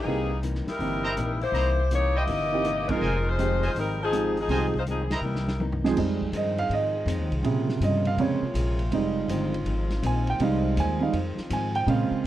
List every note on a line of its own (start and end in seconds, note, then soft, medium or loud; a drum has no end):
0.00 0.39 E3 medium
0.00 0.39 A#3 medium
0.00 0.39 D#4 medium
0.00 0.40 G#4 medium
0.05 0.63 C2 medium
0.05 0.32 C3 soft
0.05 0.28 E3 medium
0.05 0.32 E3 soft
0.05 0.28 A#3 soft
0.05 0.33 A#3 medium
0.05 0.28 C4 soft
0.05 0.28 D#4 soft
0.05 0.29 G4 medium
0.09 0.33 D#4 medium
0.43 0.69 C3 medium
0.43 0.69 E3 medium
0.43 0.69 A#3 medium
0.43 0.69 D#4 medium
0.43 closed hi-hat medium
0.55 snare soft
0.67 1.38 G3 medium
0.67 1.38 D#4 medium
0.67 1.37 E4 medium
0.67 1.38 A#4 medium
0.67 snare soft
0.67 open hi-hat soft
0.79 1.14 G1 medium
0.79 1.05 C3 soft
0.79 1.02 E3 medium
0.79 1.06 E3 soft
0.79 1.02 A#3 soft
0.79 1.06 A#3 soft
0.79 1.02 C4 soft
0.79 1.02 D#4 soft
0.79 1.07 D#4 medium
0.79 1.03 G4 medium
0.79 open hi-hat soft
1.03 1.12 E4 medium
1.03 1.12 C5 medium
1.03 1.12 D#5 medium
1.03 1.12 A#5 loud
1.16 1.51 A#1 medium
1.16 1.43 C3 medium
1.16 1.43 E3 medium
1.16 1.43 A#3 medium
1.16 1.44 D#4 medium
1.16 cross-stick medium
1.16 closed hi-hat medium
1.41 1.87 A#3 medium
1.41 1.87 E4 medium
1.41 1.87 G4 medium
1.41 1.87 C5 loud
1.41 open hi-hat soft
1.52 2.23 C2 medium
1.52 1.79 C3 soft
1.52 1.80 E3 medium
1.52 1.80 A#3 medium
1.52 1.70 E4 medium
1.52 1.70 C5 medium
1.52 1.70 D#5 medium
1.52 1.70 A#5 medium
1.52 open hi-hat soft
1.56 1.80 D#4 medium
1.91 2.16 C3 medium
1.91 2.17 E3 medium
1.91 2.14 A#3 medium
1.91 2.17 A#3 medium
1.91 2.14 D#4 medium
1.91 2.17 D#4 medium
1.91 2.14 G4 medium
1.91 2.14 C#5 loud
1.91 closed hi-hat medium
2.15 2.89 A#3 medium
2.15 2.23 E4 medium
2.15 2.89 E4 medium
2.15 2.89 G4 medium
2.15 2.23 C5 medium
2.15 2.23 D#5 medium
2.15 2.89 D#5 loud
2.15 2.23 G5 medium
2.27 2.97 G1 medium
2.27 2.53 C3 soft
2.27 2.53 E3 medium
2.27 2.54 A#3 medium
2.27 2.54 D#4 medium
2.27 open hi-hat soft
2.52 2.63 E3 medium
2.52 2.63 A#3 medium
2.52 2.64 C4 medium
2.52 2.64 D#4 medium
2.52 2.64 G4 medium
2.64 2.90 C3 medium
2.64 2.90 E3 medium
2.64 2.91 A#3 medium
2.64 2.91 D#4 medium
2.64 cross-stick medium
2.64 closed hi-hat medium
2.89 3.00 F3 medium
2.89 3.26 G#3 medium
2.89 3.01 G#3 medium
2.89 3.01 C4 medium
2.89 3.26 D#4 medium
2.89 3.01 D#4 medium
2.89 3.26 F4 medium
2.89 3.01 F4 medium
2.89 3.26 A#4 medium
2.89 kick medium
2.89 ride medium
3.00 3.71 F1 medium
3.00 3.27 F2 soft
3.00 3.27 D#3 medium
3.00 3.28 G#3 soft
3.00 3.28 C4 medium
3.00 3.17 F4 medium
3.00 3.17 C5 medium
3.00 3.17 D#5 medium
3.00 3.17 G#5 medium
3.28 3.64 G#3 medium
3.28 3.64 D#4 medium
3.28 3.63 F4 medium
3.28 3.64 C5 loud
3.38 3.64 F2 medium
3.38 3.64 D#3 medium
3.38 3.60 F3 medium
3.38 3.60 G#3 medium
3.38 3.64 G#3 medium
3.38 3.61 C4 medium
3.38 3.65 C4 medium
3.38 3.61 D#4 medium
3.38 3.61 G4 medium
3.38 closed hi-hat medium
3.62 3.76 D#4 medium
3.62 3.70 F4 medium
3.62 3.76 F4 medium
3.62 3.71 C5 medium
3.62 3.70 D#5 medium
3.62 3.71 G#5 medium
3.62 open hi-hat soft
3.66 3.76 G#3 medium
3.66 3.76 C5 medium
3.75 4.45 G#1 medium
3.75 4.01 F2 soft
3.75 4.01 D#3 soft
3.75 3.99 G3 medium
3.75 4.02 G#3 soft
3.75 3.99 C4 medium
3.75 4.02 C4 soft
3.75 3.99 D#4 medium
3.75 3.99 A#4 medium
3.75 open hi-hat soft
4.03 4.35 F3 medium
4.03 4.36 C4 medium
4.03 4.36 D#4 medium
4.03 4.35 G#4 medium
4.12 4.37 F2 medium
4.12 4.38 D#3 medium
4.12 4.34 F3 medium
4.12 4.34 G#3 soft
4.12 4.38 G#3 medium
4.12 4.39 C4 medium
4.12 4.35 C4 soft
4.12 4.35 D#4 soft
4.12 4.35 G4 medium
4.12 cross-stick medium
4.12 closed hi-hat medium
4.37 4.72 F3 medium
4.37 4.73 C4 medium
4.37 4.72 D#4 medium
4.37 4.72 G#4 medium
4.37 open hi-hat soft
4.48 5.18 C2 medium
4.48 4.75 F2 soft
4.48 4.75 D#3 soft
4.48 4.71 F3 medium
4.48 4.71 G#3 medium
4.48 4.76 G#3 medium
4.48 4.72 C4 medium
4.48 4.72 D#4 medium
4.48 4.66 F4 medium
4.48 4.72 G4 medium
4.48 4.66 C5 medium
4.48 4.66 D#5 medium
4.48 4.66 G#5 loud
4.48 open hi-hat soft
4.52 4.76 C4 medium
4.74 4.81 G#3 medium
4.74 4.81 D#4 medium
4.74 4.81 F4 medium
4.74 4.82 C5 medium
4.74 kick medium
4.87 5.12 F2 medium
4.87 5.12 D#3 medium
4.87 5.02 F3 medium
4.87 5.13 G#3 medium
4.87 5.13 C4 medium
4.87 5.02 C4 medium
4.87 5.02 D#4 medium
4.87 5.01 G#4 medium
4.87 closed hi-hat medium
5.02 5.11 G#4 medium
5.11 5.61 G3 medium
5.11 5.61 D#4 medium
5.11 5.19 E4 medium
5.11 5.61 E4 medium
5.11 5.61 A#4 medium
5.11 5.19 C5 medium
5.11 5.19 D#5 medium
5.11 5.19 A#5 medium
5.11 snare medium
5.11 ride medium
5.21 5.92 C2 medium
5.21 5.49 C3 soft
5.21 5.49 E3 soft
5.21 5.49 A#3 medium
5.26 5.50 D#4 soft
5.35 snare medium
5.48 snare medium
5.60 5.85 C3 medium
5.60 5.86 E3 medium
5.60 5.86 A#3 medium
5.60 5.86 D#4 medium
5.60 high tom medium
5.72 floor tom medium
5.84 5.95 F3 medium
5.84 5.95 G#3 medium
5.84 5.95 C4 medium
5.84 5.96 D#4 medium
5.84 5.96 G#4 medium
5.84 snare medium
5.94 6.22 F2 soft
5.94 6.31 F2 medium
5.94 7.42 D#3 medium
5.94 6.22 D#3 medium
5.94 6.25 G3 soft
5.94 6.25 G#3 soft
5.94 6.23 G#3 medium
5.94 7.42 C4 medium
5.94 6.25 D#4 soft
5.94 11.82 F4 medium
5.94 7.42 G#4 medium
5.94 kick medium
5.94 crash medium
5.98 6.23 C4 medium
6.21 kick medium
6.32 6.59 F2 medium
6.32 6.68 G2 medium
6.32 6.59 D#3 medium
6.32 6.59 G#3 medium
6.32 6.60 C4 medium
6.32 hi-hat pedal medium
6.32 ride medium
6.36 6.59 D#5 medium
6.58 6.70 F5 medium
6.58 ride soft
6.69 6.95 F2 soft
6.69 7.05 G#2 medium
6.69 6.96 D#3 soft
6.69 6.97 G#3 soft
6.69 6.97 C4 medium
6.69 ride medium
6.73 7.29 D#5 medium
7.06 7.19 F2 loud
7.06 7.33 F2 medium
7.06 7.33 D#3 medium
7.06 7.33 G#3 medium
7.06 7.33 C4 medium
7.06 hi-hat pedal medium
7.06 ride medium
7.19 7.30 D#2 medium
7.31 7.42 C2 medium
7.31 ride soft
7.43 7.79 A#2 medium
7.43 7.70 A#2 medium
7.43 8.90 A#2 medium
7.43 8.88 C3 medium
7.43 8.17 C#3 soft
7.43 12.27 F3 medium
7.43 7.70 F3 medium
7.43 7.70 G#3 medium
7.43 8.91 A#3 medium
7.43 7.71 C#4 medium
7.43 8.88 G#4 soft
7.43 ride medium
7.69 snare soft
7.80 8.16 G2 medium
7.80 8.07 A#2 medium
7.80 8.07 F3 medium
7.80 8.08 G#3 medium
7.80 8.08 C#4 medium
7.80 8.06 D#5 medium
7.80 hi-hat pedal medium
7.80 ride medium
8.05 8.18 F5 medium
8.05 ride soft
8.17 8.40 F2 medium
8.17 8.44 A#2 soft
8.17 8.40 C#3 soft
8.17 8.44 F3 medium
8.17 8.41 G#3 soft
8.17 8.45 G#3 soft
8.17 8.41 C4 soft
8.17 8.45 C#4 medium
8.17 8.77 C#5 medium
8.17 ride medium
8.42 muted upright bass stroke soft
8.54 8.90 A#1 medium
8.54 8.80 A#2 medium
8.54 8.81 F3 medium
8.54 8.81 G#3 medium
8.54 8.81 C#4 medium
8.54 hi-hat pedal medium
8.54 ride medium
8.79 ride soft
8.91 9.27 F1 medium
8.91 9.17 F2 medium
8.91 11.84 D#3 medium
8.91 9.18 D#3 medium
8.91 9.50 G3 soft
8.91 9.51 G#3 soft
8.91 9.18 G#3 medium
8.91 11.84 C4 medium
8.91 9.19 C4 medium
8.91 9.51 D#4 medium
8.91 ride medium
9.28 9.64 G1 medium
9.28 9.54 F2 medium
9.28 9.55 D#3 medium
9.28 9.55 G#3 medium
9.28 9.55 C4 medium
9.28 hi-hat pedal medium
9.28 ride medium
9.54 ride soft
9.65 10.01 G#1 medium
9.65 9.91 F2 medium
9.65 9.92 D#3 medium
9.65 9.92 G#3 medium
9.65 9.93 C4 medium
9.65 ride medium
9.90 snare soft
9.90 ride soft
10.03 10.38 A#1 loud
10.03 10.28 F2 medium
10.03 10.29 D#3 medium
10.03 10.29 G#3 medium
10.03 10.29 C4 medium
10.03 10.28 G#5 medium
10.03 hi-hat pedal medium
10.03 ride medium
10.27 10.41 G5 medium
10.27 ride soft
10.39 10.75 C2 medium
10.39 10.65 F2 medium
10.39 10.66 D#3 soft
10.39 10.98 G3 soft
10.39 10.66 G#3 medium
10.39 10.99 G#3 soft
10.39 10.67 C4 medium
10.39 10.99 D#4 medium
10.39 ride medium
10.43 10.76 F5 medium
10.77 11.13 D#2 medium
10.77 11.03 F2 medium
10.77 11.03 D#3 medium
10.77 11.03 G#3 medium
10.77 11.03 C4 medium
10.77 11.02 G#5 medium
10.77 hi-hat pedal medium
10.77 ride medium
11.01 11.12 G3 soft
11.01 11.12 G#3 soft
11.01 11.13 D#4 medium
11.01 11.14 F5 medium
11.13 11.36 F2 medium
11.13 11.39 F2 soft
11.13 11.40 D#3 soft
11.13 11.40 G#3 soft
11.13 11.40 C4 medium
11.13 ride medium
11.37 muted upright bass stroke soft
11.37 snare soft
11.49 11.76 F2 medium
11.49 11.86 G#2 loud
11.49 11.76 D#3 medium
11.49 11.77 G#3 medium
11.49 11.77 C4 medium
11.49 11.76 G#5 medium
11.49 hi-hat pedal medium
11.49 ride medium
11.75 11.87 G5 medium
11.75 ride soft
11.87 12.10 A#2 medium
11.87 12.13 A#2 soft
11.87 12.27 A#2 medium
11.87 12.27 C#3 soft
11.87 12.14 F3 soft
11.87 12.27 G#3 soft
11.87 12.14 G#3 soft
11.87 12.27 A#3 medium
11.87 12.27 C4 medium
11.87 12.14 C#4 soft
11.87 12.27 F4 medium
11.87 12.23 F5 medium
11.87 ride medium
12.11 muted upright bass stroke soft